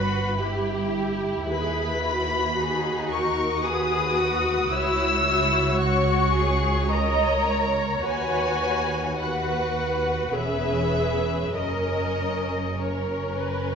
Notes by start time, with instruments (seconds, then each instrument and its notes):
Already playing: double bass section G1, cello section G2, violin section F#4 B4 B5, viola section B4
0.40 violin section E4 G4, viola section G4
1.48 cello section D#2, double bass section D#2, viola section G#4, violin section B4 B5
2.02 viola section F#4
2.58 violin section D#4 G#4
3.10 violin section A#4 C#6
3.62 violin section G#4 B4 D#6
4.18 violin section F#4
4.71 double bass section C#2, cello section C#2, violin section E4 C#5 E6
5.26 violin section E4
5.79 violin section F#4 C#6
6.36 violin section G#4
6.90 violin section A#4 C#5 A#5, viola section D#5
7.49 viola section C#5
8.04 cello section D#2, double bass section D#2, violin section F#4 B4 G#5
9.16 violin section F#4 B4 F#5, viola section B4
10.31 double bass section E1, cello section E2, violin section C#4 B4 E5, viola section G#4
11.54 double bass section F#1, cello section F#2, violin section C#4 A#4 D#5, viola section A#4
12.77 violin section C#4 A#4 C#5, viola section A#4
13.38 viola section B4